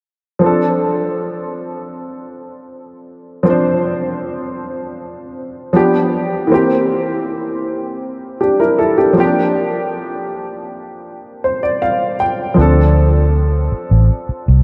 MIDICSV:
0, 0, Header, 1, 4, 480
1, 0, Start_track
1, 0, Key_signature, -1, "minor"
1, 0, Tempo, 759494
1, 270, Time_signature, 4, 2, 24, 8
1, 9248, End_track
2, 0, Start_track
2, 0, Title_t, "Grand piano"
2, 0, Program_c, 0, 0
2, 248, Note_on_c, 0, 53, 67
2, 262, Note_on_c, 0, 60, 61
2, 277, Note_on_c, 0, 62, 59
2, 291, Note_on_c, 0, 69, 73
2, 377, Control_c, 0, 64, 127
2, 2154, Note_off_c, 0, 53, 0
2, 2161, Note_off_c, 0, 60, 0
2, 2168, Note_off_c, 0, 62, 0
2, 2168, Note_on_c, 0, 53, 72
2, 2175, Note_off_c, 0, 69, 0
2, 2183, Note_on_c, 0, 60, 62
2, 2197, Note_on_c, 0, 62, 61
2, 2211, Note_on_c, 0, 72, 73
2, 3594, Note_off_c, 0, 53, 0
2, 3602, Note_off_c, 0, 60, 0
2, 3608, Note_off_c, 0, 62, 0
2, 3616, Note_off_c, 0, 72, 0
2, 3621, Note_on_c, 0, 53, 70
2, 3629, Note_on_c, 0, 59, 62
2, 3635, Note_on_c, 0, 62, 62
2, 3638, Control_c, 0, 64, 0
2, 3643, Note_on_c, 0, 67, 78
2, 3739, Control_c, 0, 64, 127
2, 4090, Note_on_c, 0, 52, 69
2, 4105, Note_on_c, 0, 58, 67
2, 4106, Note_off_c, 0, 53, 0
2, 4110, Note_off_c, 0, 59, 0
2, 4113, Note_off_c, 0, 62, 0
2, 4117, Note_off_c, 0, 67, 0
2, 4119, Note_on_c, 0, 60, 66
2, 4120, Control_c, 0, 64, 0
2, 4133, Note_on_c, 0, 67, 77
2, 4219, Control_c, 0, 64, 127
2, 5298, Note_off_c, 0, 67, 0
2, 5313, Note_on_c, 0, 67, 57
2, 5315, Note_on_c, 0, 62, 47
2, 5426, Note_off_c, 0, 67, 0
2, 5427, Note_off_c, 0, 62, 0
2, 5433, Note_on_c, 0, 70, 64
2, 5436, Note_on_c, 0, 64, 51
2, 5546, Note_off_c, 0, 64, 0
2, 5546, Note_off_c, 0, 70, 0
2, 5552, Note_on_c, 0, 69, 66
2, 5556, Note_on_c, 0, 64, 55
2, 5665, Note_off_c, 0, 69, 0
2, 5667, Note_off_c, 0, 64, 0
2, 5674, Note_on_c, 0, 67, 62
2, 5678, Note_on_c, 0, 62, 51
2, 5755, Note_off_c, 0, 52, 0
2, 5762, Note_off_c, 0, 58, 0
2, 5770, Note_off_c, 0, 60, 0
2, 5770, Note_on_c, 0, 53, 70
2, 5785, Note_on_c, 0, 58, 63
2, 5798, Control_c, 0, 64, 0
2, 5799, Note_on_c, 0, 60, 52
2, 5805, Note_off_c, 0, 67, 0
2, 5814, Note_on_c, 0, 67, 80
2, 5831, Note_off_c, 0, 62, 0
2, 5836, Note_off_c, 0, 60, 0
2, 5840, Note_on_c, 0, 62, 66
2, 5922, Control_c, 0, 64, 127
2, 7231, Note_on_c, 0, 72, 62
2, 7342, Note_off_c, 0, 72, 0
2, 7350, Note_on_c, 0, 74, 59
2, 7462, Note_off_c, 0, 74, 0
2, 7469, Note_on_c, 0, 77, 71
2, 7675, Note_off_c, 0, 53, 0
2, 7682, Note_off_c, 0, 58, 0
2, 7693, Note_off_c, 0, 77, 0
2, 7697, Note_off_c, 0, 67, 0
2, 7710, Note_off_c, 0, 62, 0
2, 7710, Note_on_c, 0, 79, 64
2, 7927, Note_on_c, 0, 53, 71
2, 7933, Note_off_c, 0, 79, 0
2, 7942, Note_on_c, 0, 60, 64
2, 7957, Note_on_c, 0, 62, 63
2, 7959, Control_c, 0, 64, 0
2, 7971, Note_on_c, 0, 69, 81
2, 8079, Control_c, 0, 64, 127
2, 9248, Note_off_c, 0, 53, 0
2, 9248, Note_off_c, 0, 60, 0
2, 9248, Note_off_c, 0, 62, 0
2, 9248, Note_off_c, 0, 69, 0
2, 9248, End_track
3, 0, Start_track
3, 0, Title_t, "Fingered electric bass"
3, 0, Program_c, 1, 33
3, 7949, Note_on_c, 1, 38, 96
3, 8645, Note_off_c, 1, 38, 0
3, 8792, Note_on_c, 1, 33, 85
3, 8900, Note_off_c, 1, 33, 0
3, 9152, Note_on_c, 1, 36, 87
3, 9248, Note_off_c, 1, 36, 0
3, 9248, End_track
4, 0, Start_track
4, 0, Title_t, "Muted fingered electric bass strokes"
4, 8671, Note_on_c, 9, 29, 44
4, 8734, Note_off_c, 9, 29, 0
4, 9031, Note_on_c, 9, 29, 45
4, 9094, Note_off_c, 9, 29, 0
4, 9248, End_track
0, 0, End_of_file